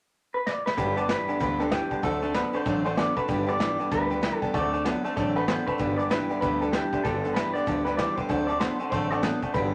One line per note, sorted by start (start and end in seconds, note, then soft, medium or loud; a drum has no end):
0.34 0.46 B4 medium
0.46 0.66 D5 loud
0.46 snare medium
0.66 0.95 B4 loud
0.66 snare medium
0.77 1.13 G1 medium
0.77 0.97 G2 medium
0.77 0.95 G2 medium
0.77 0.95 D3 medium
0.77 0.97 D3 medium
0.77 0.97 G3 medium
0.77 0.97 B3 medium
0.77 0.96 D4 loud
0.77 0.95 G4 loud
0.77 0.89 B4 loud
0.77 0.89 D5 loud
0.77 0.89 G5 loud
0.77 kick loud
0.77 closed hi-hat medium
0.96 1.08 G2 medium
0.96 1.08 D3 medium
0.96 1.07 G3 soft
0.96 1.08 B3 medium
0.96 1.09 D4 medium
0.96 1.09 G4 medium
0.96 1.04 B4 medium
0.96 1.09 D5 medium
0.96 1.04 D5 medium
0.96 1.05 A5 medium
0.96 closed hi-hat medium
1.08 1.26 G2 medium
1.08 1.27 E3 medium
1.08 1.28 G3 medium
1.08 1.28 B3 medium
1.08 1.28 D4 medium
1.08 1.26 G4 medium
1.08 1.20 B4 medium
1.08 1.39 B4 medium
1.08 1.21 D5 medium
1.08 1.21 E5 medium
1.08 snare loud
1.08 closed hi-hat medium
1.28 1.39 G2 medium
1.28 1.40 D3 medium
1.28 1.40 G3 soft
1.28 1.40 B3 soft
1.28 1.40 D4 medium
1.28 1.40 G4 medium
1.28 1.35 B4 medium
1.28 1.36 D5 medium
1.28 1.36 E5 medium
1.28 muted upright bass stroke medium
1.28 closed hi-hat medium
1.40 1.76 D2 medium
1.40 1.59 G2 medium
1.40 1.58 G2 medium
1.40 1.60 D3 medium
1.40 1.58 D3 medium
1.40 1.60 G3 medium
1.40 1.60 B3 medium
1.40 1.59 D4 medium
1.40 1.57 G4 medium
1.40 1.52 B4 medium
1.40 1.60 B4 medium
1.40 1.52 D5 medium
1.40 1.52 G5 medium
1.40 kick loud
1.40 closed hi-hat medium
1.58 1.71 G2 medium
1.58 1.71 D3 medium
1.58 1.69 G3 soft
1.58 1.70 B3 soft
1.58 1.71 D4 medium
1.58 1.71 G4 medium
1.58 1.72 A4 medium
1.58 1.67 B4 medium
1.58 1.67 D5 medium
1.58 1.67 G5 loud
1.58 snare soft
1.58 closed hi-hat medium
1.70 1.89 G2 medium
1.70 1.90 E3 medium
1.70 1.90 G3 medium
1.70 1.91 B3 medium
1.70 2.01 G4 medium
1.70 1.83 B4 medium
1.70 1.84 D5 medium
1.70 1.84 G5 loud
1.70 snare loud
1.70 closed hi-hat medium
1.90 2.02 G2 medium
1.90 2.02 D3 medium
1.90 2.03 G3 soft
1.90 2.03 B3 soft
1.90 2.03 D4 medium
1.90 2.03 G4 medium
1.90 1.98 B4 medium
1.90 1.98 D5 medium
1.90 1.98 A5 medium
1.90 muted upright bass stroke medium
1.90 kick medium
1.90 closed hi-hat medium
2.02 2.39 D2 loud
2.02 2.22 D3 medium
2.02 2.21 D3 medium
2.02 2.23 F#3 medium
2.02 2.21 A3 medium
2.02 2.23 C4 medium
2.02 2.22 D4 medium
2.02 2.15 A4 medium
2.02 2.35 A4 medium
2.02 2.20 A4 medium
2.02 2.15 D5 medium
2.02 2.15 F#5 loud
2.02 kick loud
2.02 closed hi-hat medium
2.21 2.33 D3 medium
2.21 2.34 A3 medium
2.21 2.33 C4 soft
2.21 2.34 D4 medium
2.21 2.34 A4 medium
2.21 2.30 A4 medium
2.21 2.30 D5 medium
2.21 2.30 F#5 medium
2.21 closed hi-hat medium
2.33 2.52 D3 medium
2.33 2.53 F#3 medium
2.33 2.52 B3 medium
2.33 2.54 C4 medium
2.33 2.53 D4 medium
2.33 2.46 A4 medium
2.33 2.52 A4 medium
2.33 2.54 B4 medium
2.33 2.46 D5 medium
2.33 2.47 A5 medium
2.33 snare loud
2.33 closed hi-hat medium
2.53 2.64 D3 medium
2.53 2.65 A3 medium
2.53 2.65 C4 soft
2.53 2.66 D4 soft
2.53 2.66 A4 medium
2.53 2.61 A4 medium
2.53 2.84 C5 loud
2.53 2.61 D5 medium
2.53 2.61 F#5 medium
2.53 muted upright bass stroke medium
2.53 closed hi-hat medium
2.65 3.02 A1 medium
2.65 2.85 D3 medium
2.65 2.83 D3 medium
2.65 2.86 F#3 medium
2.65 2.84 A3 medium
2.65 2.86 C4 medium
2.65 2.85 D4 medium
2.65 2.77 A4 medium
2.65 2.83 A4 medium
2.65 2.78 D5 medium
2.65 2.78 F#5 medium
2.65 kick loud
2.65 snare soft
2.65 closed hi-hat medium
2.84 2.96 D3 medium
2.84 2.96 A3 medium
2.84 2.96 C4 soft
2.84 2.97 D4 medium
2.84 2.97 A4 medium
2.84 2.92 A4 medium
2.84 2.97 C5 medium
2.84 2.93 D5 medium
2.84 2.93 F#5 loud
2.84 snare soft
2.84 closed hi-hat medium
2.95 3.15 D3 medium
2.95 3.16 F#3 medium
2.95 3.15 B3 medium
2.95 3.17 C4 medium
2.95 3.16 D4 medium
2.95 3.09 A4 medium
2.95 3.14 A4 medium
2.95 3.17 D5 medium
2.95 3.09 D5 medium
2.95 3.09 F#5 loud
2.95 snare loud
2.95 closed hi-hat medium
3.15 3.27 D3 medium
3.15 3.28 A3 medium
3.15 3.29 C4 soft
3.15 3.29 D4 soft
3.15 3.28 A4 medium
3.15 3.24 A4 medium
3.15 3.46 B4 medium
3.15 3.24 D5 medium
3.15 3.24 F#5 medium
3.15 kick medium
3.15 closed hi-hat medium
3.28 3.64 G1 loud
3.28 3.48 G2 medium
3.28 3.46 G2 medium
3.28 3.48 D3 medium
3.28 3.46 D3 medium
3.28 3.48 G3 medium
3.28 3.48 B3 medium
3.28 3.46 D4 medium
3.28 3.45 G4 medium
3.28 3.40 B4 medium
3.28 3.40 D5 medium
3.28 3.41 G5 loud
3.28 kick loud
3.28 closed hi-hat medium
3.46 3.58 G2 medium
3.46 3.59 D3 medium
3.46 3.57 G3 soft
3.46 3.59 B3 medium
3.46 3.60 D4 medium
3.46 3.59 G4 medium
3.46 3.55 B4 medium
3.46 3.55 D5 medium
3.46 3.89 D5 loud
3.46 3.55 G5 medium
3.46 closed hi-hat medium
3.58 3.77 G2 medium
3.58 3.78 E3 medium
3.58 3.79 G3 medium
3.58 3.79 B3 medium
3.58 3.78 D4 medium
3.58 3.77 G4 medium
3.58 3.71 B4 medium
3.58 3.72 D5 medium
3.58 3.72 G5 medium
3.58 snare loud
3.58 closed hi-hat medium
3.78 3.90 G2 medium
3.78 3.90 D3 medium
3.78 3.91 G3 soft
3.78 3.92 B3 soft
3.78 3.92 D4 soft
3.78 3.91 G4 medium
3.78 3.87 B4 medium
3.78 3.87 D5 medium
3.78 3.87 G5 medium
3.78 muted upright bass stroke medium
3.78 closed hi-hat medium
3.90 4.27 D2 medium
3.90 4.09 G2 medium
3.90 4.11 G2 medium
3.90 4.09 D3 medium
3.90 4.11 D3 medium
3.90 4.11 G3 medium
3.90 4.12 B3 medium
3.90 4.10 D4 medium
3.90 4.09 G4 medium
3.90 4.03 B4 medium
3.90 4.37 B4 medium
3.90 4.03 D5 medium
3.90 4.03 G5 medium
3.90 kick loud
3.90 snare soft
3.90 closed hi-hat medium
4.10 4.21 G2 medium
4.10 4.22 D3 medium
4.10 4.20 G3 soft
4.10 4.22 B3 soft
4.10 4.23 D4 soft
4.10 4.23 G4 medium
4.10 4.18 B4 loud
4.10 4.18 D5 medium
4.10 4.18 G5 loud
4.10 closed hi-hat medium
4.22 4.40 G2 medium
4.22 4.40 E3 medium
4.22 4.42 G3 medium
4.22 4.42 B3 medium
4.22 4.42 D4 medium
4.22 4.41 G4 medium
4.22 4.34 B4 medium
4.22 4.34 D5 medium
4.22 4.34 G5 loud
4.22 snare loud
4.22 closed hi-hat medium
4.37 4.50 A4 medium
4.41 4.53 G2 medium
4.41 4.52 D3 medium
4.41 4.55 G3 soft
4.41 4.55 B3 medium
4.41 4.55 D4 medium
4.41 4.54 G4 medium
4.41 4.49 B4 medium
4.41 4.49 D5 medium
4.41 4.50 A5 loud
4.41 kick medium
4.41 closed hi-hat medium
4.54 4.90 D2 medium
4.54 4.71 D3 medium
4.54 4.74 D3 medium
4.54 4.74 F#3 medium
4.54 4.72 A3 medium
4.54 4.74 C4 medium
4.54 4.74 D4 medium
4.54 4.66 A4 medium
4.54 4.72 A4 medium
4.54 4.66 D5 medium
4.54 4.84 D5 medium
4.54 4.66 F#5 loud
4.54 kick loud
4.54 closed hi-hat medium
4.72 4.83 D3 medium
4.72 4.84 A3 medium
4.72 4.86 D4 soft
4.72 4.80 A4 medium
4.72 4.85 A4 medium
4.72 4.80 D5 medium
4.72 4.81 A5 medium
4.72 closed hi-hat medium
4.77 4.85 C4 soft
4.85 5.03 D3 medium
4.85 5.05 F#3 medium
4.85 5.03 B3 medium
4.85 5.05 C4 medium
4.85 5.05 D4 medium
4.85 4.97 A4 medium
4.85 5.03 A4 medium
4.85 4.97 D5 medium
4.85 4.97 A5 medium
4.85 snare loud
4.85 closed hi-hat medium
5.04 5.15 D3 medium
5.04 5.16 A3 medium
5.04 5.16 C4 medium
5.04 5.17 D4 medium
5.04 5.12 A4 medium
5.04 5.17 A4 medium
5.04 5.12 D5 medium
5.04 5.12 A5 medium
5.04 muted upright bass stroke medium
5.04 snare soft
5.04 closed hi-hat medium
5.16 5.53 A1 medium
5.16 5.34 D3 medium
5.16 5.36 D3 medium
5.16 5.36 F#3 medium
5.16 5.34 A3 medium
5.16 5.37 C4 medium
5.16 5.36 D4 loud
5.16 5.28 A4 medium
5.16 5.34 A4 medium
5.16 5.28 D5 medium
5.16 5.28 A5 medium
5.16 kick loud
5.16 snare soft
5.16 closed hi-hat medium
5.35 5.46 D3 medium
5.35 5.47 A3 medium
5.35 5.48 C4 soft
5.35 5.49 D4 medium
5.35 5.43 A4 medium
5.35 5.48 A4 medium
5.35 5.48 B4 loud
5.35 5.43 D5 medium
5.35 5.43 F#5 loud
5.35 closed hi-hat medium
5.48 5.65 D3 medium
5.48 5.67 F#3 medium
5.48 5.66 B3 medium
5.48 5.68 C4 medium
5.48 5.67 D4 medium
5.48 5.60 A4 medium
5.48 5.65 A4 medium
5.48 5.66 C5 medium
5.48 5.60 D5 medium
5.48 5.60 F#5 loud
5.48 snare loud
5.48 closed hi-hat medium
5.66 5.78 D3 medium
5.66 5.78 A3 medium
5.66 5.80 C4 soft
5.66 5.79 D4 soft
5.66 5.79 A4 medium
5.66 5.75 A4 medium
5.66 5.96 B4 medium
5.66 5.75 D5 medium
5.66 5.75 F#5 medium
5.66 kick medium
5.66 closed hi-hat medium
5.78 6.15 G1 medium
5.78 5.98 G2 medium
5.78 5.97 G2 medium
5.78 5.99 D3 medium
5.78 5.97 D3 medium
5.78 5.99 G3 medium
5.78 5.99 B3 medium
5.78 5.98 D4 medium
5.78 5.97 G4 medium
5.78 5.91 B4 medium
5.78 5.91 D5 medium
5.78 5.91 G5 loud
5.78 kick loud
5.78 closed hi-hat medium
5.98 6.09 G2 medium
5.98 6.10 D3 medium
5.98 6.08 G3 soft
5.98 6.10 B3 soft
5.98 6.11 D4 soft
5.98 6.10 G4 medium
5.98 6.06 B4 medium
5.98 6.03 D5 medium
5.98 6.06 D5 medium
5.98 6.06 G5 medium
5.98 closed hi-hat medium
6.10 6.28 G2 medium
6.10 6.28 E3 medium
6.10 6.30 G3 medium
6.10 6.30 B3 medium
6.10 6.29 D4 medium
6.10 6.28 G4 medium
6.10 6.22 B4 medium
6.10 6.40 B4 medium
6.10 6.22 D5 medium
6.10 6.23 G5 medium
6.10 snare loud
6.10 closed hi-hat medium
6.29 6.41 G2 medium
6.29 6.41 D3 medium
6.29 6.42 G3 soft
6.29 6.42 B3 soft
6.29 6.42 D4 soft
6.29 6.42 G4 medium
6.29 6.37 B4 medium
6.29 6.37 D5 medium
6.29 6.38 E5 medium
6.29 muted upright bass stroke medium
6.29 closed hi-hat medium
6.41 6.78 D2 medium
6.41 6.61 G2 medium
6.41 6.59 G2 medium
6.41 6.60 D3 medium
6.41 6.62 D3 medium
6.41 6.62 G3 medium
6.41 6.62 B3 medium
6.41 6.62 D4 medium
6.41 6.60 G4 medium
6.41 6.61 B4 loud
6.41 6.54 B4 medium
6.41 6.54 D5 medium
6.41 6.54 E5 medium
6.41 kick loud
6.41 closed hi-hat medium
6.61 6.72 G2 medium
6.61 6.73 D3 medium
6.61 6.73 B3 soft
6.61 6.74 D4 soft
6.61 6.73 G4 medium
6.61 6.73 A4 medium
6.61 6.69 B4 loud
6.61 6.69 D5 medium
6.61 6.69 G5 loud
6.61 closed hi-hat medium
6.65 6.71 G3 soft
6.72 6.91 G2 medium
6.72 6.91 E3 medium
6.72 6.92 G3 medium
6.72 6.93 B3 medium
6.72 6.92 D4 medium
6.72 7.05 G4 medium
6.72 6.91 G4 medium
6.72 6.85 B4 medium
6.72 6.85 D5 medium
6.72 6.86 E5 medium
6.72 snare loud
6.72 closed hi-hat medium
6.92 7.03 G2 medium
6.92 7.04 D3 medium
6.92 7.04 G3 soft
6.92 7.05 B3 soft
6.92 7.05 D4 soft
6.92 7.05 G4 medium
6.92 7.00 B4 medium
6.92 7.00 D5 medium
6.92 7.00 E5 medium
6.92 muted upright bass stroke medium
6.92 kick medium
6.92 closed hi-hat medium
7.04 7.40 G1 loud
7.04 7.22 G2 medium
7.04 7.24 G2 medium
7.04 7.22 D3 medium
7.04 7.24 D3 medium
7.04 7.24 G3 medium
7.04 7.25 B3 medium
7.04 7.24 D4 medium
7.04 7.22 G4 medium
7.04 7.34 A4 medium
7.04 7.16 B4 medium
7.04 7.16 D5 medium
7.04 7.16 G5 loud
7.04 kick loud
7.04 closed hi-hat medium
7.24 7.35 G2 medium
7.24 7.35 D3 medium
7.24 7.34 G3 soft
7.24 7.35 B3 medium
7.24 7.36 D4 medium
7.24 7.36 G4 medium
7.24 7.31 B4 medium
7.24 7.31 D5 medium
7.24 7.32 F#5 medium
7.24 closed hi-hat medium
7.34 7.53 G2 medium
7.34 7.54 E3 medium
7.34 7.55 G3 medium
7.34 7.55 B3 medium
7.34 7.55 D4 medium
7.34 7.54 G4 medium
7.34 7.53 B4 medium
7.34 7.48 B4 medium
7.34 7.48 D5 medium
7.34 7.48 E5 medium
7.34 snare loud
7.34 closed hi-hat medium
7.53 7.65 G2 medium
7.53 7.66 D3 medium
7.53 7.66 B3 soft
7.53 7.67 D4 soft
7.53 7.67 G4 soft
7.53 7.62 B4 medium
7.53 7.85 D5 loud
7.53 7.63 D5 medium
7.53 7.63 G5 medium
7.53 muted upright bass stroke medium
7.53 closed hi-hat medium
7.58 7.66 G3 soft
7.66 8.03 D2 medium
7.66 7.86 G2 medium
7.66 7.84 G2 medium
7.66 7.86 D3 medium
7.66 7.85 D3 medium
7.66 7.87 G3 medium
7.66 7.86 B3 medium
7.66 7.85 D4 medium
7.66 7.84 G4 medium
7.66 7.79 B4 medium
7.66 7.79 D5 medium
7.66 7.79 A5 medium
7.66 kick loud
7.66 closed hi-hat medium
7.85 7.97 G2 medium
7.85 7.97 D3 medium
7.85 7.96 G3 soft
7.85 7.98 B3 soft
7.85 7.99 D4 soft
7.85 7.98 G4 medium
7.85 7.97 B4 medium
7.85 7.94 B4 medium
7.85 7.94 D5 medium
7.85 7.94 G5 loud
7.85 snare soft
7.85 closed hi-hat medium
7.97 8.16 G2 medium
7.97 8.16 E3 medium
7.97 8.17 G3 medium
7.97 8.18 B3 medium
7.97 8.17 D4 medium
7.97 8.16 G4 medium
7.97 8.10 B4 medium
7.97 8.16 D5 medium
7.97 8.10 D5 medium
7.97 8.11 G5 loud
7.97 snare loud
7.97 closed hi-hat medium
8.16 8.28 G2 medium
8.16 8.28 D3 medium
8.16 8.30 B3 soft
8.16 8.29 D4 medium
8.16 8.29 G4 medium
8.16 8.25 B4 medium
8.16 8.47 C5 medium
8.16 8.25 D5 medium
8.16 8.25 G5 medium
8.16 muted upright bass stroke medium
8.16 kick medium
8.16 closed hi-hat medium
8.21 8.29 G3 soft
8.29 8.65 D2 loud
8.29 8.49 D3 medium
8.29 8.47 D3 medium
8.29 8.49 F#3 medium
8.29 8.47 A3 loud
8.29 8.49 C4 medium
8.29 8.49 D4 medium
8.29 8.41 A4 medium
8.29 8.47 A4 medium
8.29 8.41 D5 medium
8.29 8.41 F#5 loud
8.29 kick loud
8.29 closed hi-hat medium
8.47 8.60 D3 medium
8.47 8.60 A3 medium
8.47 8.61 D4 soft
8.47 8.60 A4 medium
8.47 8.56 A4 medium
8.47 8.60 D5 medium
8.47 8.56 D5 medium
8.47 8.56 A5 medium
8.47 closed hi-hat medium
8.51 8.60 C4 soft
8.60 8.78 D3 medium
8.60 8.80 F#3 medium
8.60 8.79 B3 medium
8.60 8.80 C4 medium
8.60 8.80 D4 medium
8.60 8.73 A4 medium
8.60 8.78 A4 medium
8.60 8.90 C5 medium
8.60 8.73 D5 medium
8.60 8.73 E5 medium
8.60 snare loud
8.60 closed hi-hat medium
8.79 8.90 D3 medium
8.79 8.91 A3 medium
8.79 8.92 C4 soft
8.79 8.93 D4 soft
8.79 8.92 A4 medium
8.79 8.88 A4 medium
8.79 8.88 D5 medium
8.79 8.88 F#5 medium
8.79 muted upright bass stroke medium
8.79 closed hi-hat medium
8.91 9.28 A1 medium
8.91 9.09 D3 medium
8.91 9.11 D3 medium
8.91 9.12 F#3 medium
8.91 9.10 A3 medium
8.91 9.12 C4 medium
8.91 9.11 D4 medium
8.91 9.04 A4 medium
8.91 9.09 A4 medium
8.91 9.10 C5 loud
8.91 9.04 D5 medium
8.91 9.04 F#5 medium
8.91 kick loud
8.91 closed hi-hat medium
9.10 9.22 D3 medium
9.10 9.23 A3 medium
9.10 9.23 C4 soft
9.10 9.24 D4 medium
9.10 9.23 A4 medium
9.10 9.19 A4 loud
9.10 9.23 D5 medium
9.10 9.19 D5 medium
9.10 9.19 F#5 loud
9.10 closed hi-hat medium
9.22 9.41 D3 medium
9.22 9.42 F#3 medium
9.22 9.41 B3 loud
9.22 9.43 C4 medium
9.22 9.43 D4 medium
9.22 9.35 A4 medium
9.22 9.41 A4 medium
9.22 9.54 C5 loud
9.22 9.35 D5 medium
9.22 9.35 F#5 loud
9.22 snare loud
9.22 closed hi-hat medium
9.42 9.53 D3 medium
9.42 9.54 A3 medium
9.42 9.55 C4 soft
9.42 9.55 D4 soft
9.42 9.54 A4 soft
9.42 9.50 A4 medium
9.42 9.50 D5 medium
9.42 9.50 F#5 medium
9.42 kick medium
9.42 closed hi-hat medium
9.54 9.74 G1 loud
9.54 9.74 G2 medium
9.54 9.72 G2 medium
9.54 9.72 D3 medium
9.54 9.74 D3 medium
9.54 9.74 G3 medium
9.54 9.74 B3 medium
9.54 9.73 D4 medium
9.54 9.72 G4 medium
9.54 9.74 B4 medium
9.54 9.66 B4 medium
9.54 9.66 D5 medium
9.54 9.67 G5 loud
9.54 kick loud
9.54 closed hi-hat medium